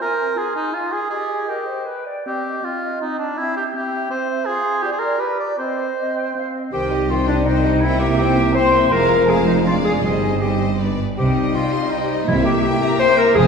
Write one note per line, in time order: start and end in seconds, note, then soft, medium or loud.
0.00 0.33 F4 medium
0.00 0.39 A#4 medium
0.00 0.16 G#5 medium
0.17 0.34 G#5 soft
0.35 0.69 F4 medium
0.35 0.55 G#4 medium
0.35 0.51 G#5 medium
0.53 0.76 D#4 medium
0.53 0.71 G#5 soft
0.72 1.06 F4 medium
0.72 0.93 F4 medium
0.72 0.89 G#5 soft
0.91 1.09 G#4 medium
0.91 1.10 G#5 soft
1.10 1.44 G4 medium
1.10 1.51 G#4 medium
1.10 1.28 D#5 soft
1.29 1.47 D#5 soft
1.48 1.87 G4 medium
1.48 1.67 A#4 soft
1.48 1.67 D#5 soft
1.66 1.87 C5 soft
1.66 1.87 D#5 soft
1.86 2.05 B4 soft
1.86 2.06 G5 soft
2.06 2.25 D5 soft
2.06 2.25 G5 soft
2.25 2.58 C4 medium
2.25 2.66 G4 medium
2.25 2.44 D#5 soft
2.45 2.62 D#5 soft
2.62 2.95 C4 soft
2.62 3.00 F4 medium
2.62 2.80 D#5 soft
2.82 3.00 D#5 soft
3.01 3.32 C4 soft
3.01 3.18 D#4 medium
3.01 3.19 D#5 soft
3.19 3.39 D4 medium
3.19 3.37 D#5 soft
3.37 3.69 C4 medium
3.37 3.55 E4 medium
3.37 3.55 E5 soft
3.56 3.64 G4 medium
3.56 3.73 E5 soft
3.74 4.06 C4 medium
3.74 4.09 G4 medium
3.74 3.92 E5 soft
3.94 4.10 E5 soft
4.10 4.41 C4 medium
4.10 4.47 C5 medium
4.10 4.28 E5 soft
4.30 4.47 E5 soft
4.45 4.78 F4 medium
4.45 4.83 G#4 medium
4.45 4.63 F5 medium
4.65 4.82 F5 soft
4.82 5.15 F4 medium
4.82 4.91 G4 medium
4.82 5.00 D5 soft
4.92 5.01 G#4 medium
4.99 5.21 A#4 medium
4.99 5.19 D5 soft
5.18 5.52 G4 medium
5.18 5.38 B4 medium
5.18 5.37 D5 soft
5.39 5.57 D5 soft
5.39 5.58 D5 medium
5.58 5.92 C4 medium
5.58 6.52 C5 medium
5.58 5.77 D#5 soft
5.78 5.96 D#5 soft
5.97 6.31 C4 soft
5.97 6.15 D#5 medium
6.16 6.34 G5 soft
6.35 6.68 C4 soft
6.35 6.53 F5 soft
6.55 6.61 D#5 soft
6.72 8.88 C2 medium
6.72 8.88 C3 medium
6.72 6.90 D#3 medium
6.72 7.79 C4 medium
6.72 7.79 D#4 medium
6.72 7.11 G4 medium
6.72 6.89 C5 soft
6.72 6.90 G5 medium
6.72 7.07 G5 medium
6.91 7.09 G3 soft
6.91 7.09 G4 soft
6.91 7.10 D#5 soft
7.09 7.28 D#3 soft
7.09 7.26 F4 medium
7.09 7.28 C5 soft
7.09 7.16 F5 medium
7.09 7.28 G5 medium
7.27 7.46 G3 soft
7.27 7.36 D4 medium
7.27 7.47 G4 soft
7.27 7.46 D5 medium
7.27 7.47 D#5 soft
7.45 7.63 D#3 medium
7.45 7.82 D#4 medium
7.45 7.64 C5 soft
7.45 7.83 D#5 medium
7.45 7.64 G5 soft
7.64 7.83 G3 medium
7.64 7.84 G4 soft
7.64 7.83 D#5 soft
7.81 8.92 A#3 medium
7.81 8.00 C4 medium
7.81 7.98 E4 medium
7.81 8.91 E4 medium
7.81 8.00 C5 medium
7.81 8.01 E5 medium
7.81 8.00 G5 medium
7.99 8.19 A#3 medium
7.99 8.16 G4 medium
7.99 8.20 A#4 medium
7.99 8.19 E5 medium
7.99 8.07 G5 medium
8.17 8.38 C4 medium
8.17 8.54 G4 medium
8.17 8.38 C5 medium
8.17 8.55 G5 medium
8.17 8.38 G5 medium
8.37 8.55 A#3 medium
8.37 8.56 A#4 medium
8.37 8.56 E5 medium
8.54 8.72 C4 medium
8.54 8.93 C5 loud
8.54 8.73 C5 medium
8.54 8.72 G5 medium
8.54 8.91 C6 medium
8.73 8.91 A#3 medium
8.73 8.92 A#4 medium
8.73 8.92 E5 medium
8.91 9.99 F1 medium
8.91 10.00 F2 medium
8.91 9.25 G#3 medium
8.91 9.26 G#3 medium
8.91 9.25 F4 medium
8.91 9.31 A#4 loud
8.91 9.26 C5 medium
8.91 9.26 F5 medium
8.91 9.28 A#5 medium
9.26 9.64 G#3 medium
9.26 9.64 F4 medium
9.26 9.46 G#4 medium
9.26 9.65 C5 medium
9.26 9.65 F5 medium
9.26 9.46 G#5 medium
9.45 9.55 D#4 medium
9.45 9.65 D#5 medium
9.63 10.02 G#3 soft
9.63 10.03 G#3 medium
9.63 10.04 D4 medium
9.63 9.75 F4 medium
9.63 10.04 D5 medium
9.63 9.69 F5 medium
9.63 10.03 F5 medium
9.82 9.93 G#4 medium
9.82 10.00 G#5 medium
10.02 10.96 G1 medium
10.02 10.97 G2 medium
10.02 10.39 G3 medium
10.02 10.41 C4 soft
10.02 10.40 D#4 soft
10.02 10.43 G#4 medium
10.02 10.41 C5 soft
10.02 10.40 D#5 medium
10.02 10.40 G#5 medium
10.41 10.77 G3 soft
10.41 10.79 C4 soft
10.41 10.79 D#4 medium
10.41 10.80 G4 medium
10.41 10.79 C5 medium
10.41 10.78 D#5 soft
10.41 10.79 G5 soft
10.78 10.86 G3 soft
10.78 10.99 B3 medium
10.78 10.98 D4 soft
10.78 10.98 B4 soft
10.78 10.98 D5 medium
11.16 11.48 C2 medium
11.16 11.48 C3 medium
11.16 12.23 G3 medium
11.16 11.87 C4 medium
11.16 11.88 D#4 medium
11.16 11.56 G4 medium
11.16 11.35 C5 medium
11.16 12.24 D#5 medium
11.16 11.51 G5 medium
11.36 11.54 D#5 soft
11.54 11.92 F4 medium
11.54 11.90 F5 medium
11.54 11.73 G5 soft
11.73 11.91 C6 soft
11.91 12.27 C4 medium
11.91 12.27 D#4 medium
11.91 12.27 D#5 medium
11.91 12.10 G5 soft
12.11 12.28 D#5 medium
12.28 12.58 C2 medium
12.28 12.58 C3 medium
12.28 12.78 C3 medium
12.28 13.36 A#3 medium
12.28 12.63 A#3 medium
12.28 12.36 E4 medium
12.28 12.63 E4 medium
12.28 12.46 C5 medium
12.28 13.36 E5 medium
12.28 12.45 E5 medium
12.45 12.61 G4 medium
12.45 12.64 E5 medium
12.45 12.61 G5 medium
12.62 12.99 A#3 medium
12.62 12.99 E4 medium
12.62 12.98 G4 medium
12.62 12.98 G5 medium
12.62 12.82 G5 medium
12.83 13.01 A#5 medium
12.99 13.36 A#3 medium
12.99 13.36 E4 medium
12.99 13.19 C5 loud
12.99 13.19 G5 medium
12.99 13.18 C6 medium
13.17 13.34 A#4 loud
13.17 13.37 E5 medium
13.17 13.36 A#5 medium
13.35 13.47 F1 medium
13.35 13.47 F2 medium
13.35 13.47 G#3 medium
13.35 13.47 F4 medium
13.35 13.47 G#4 loud
13.35 13.47 C5 medium
13.35 13.47 F5 medium
13.35 13.47 G#5 medium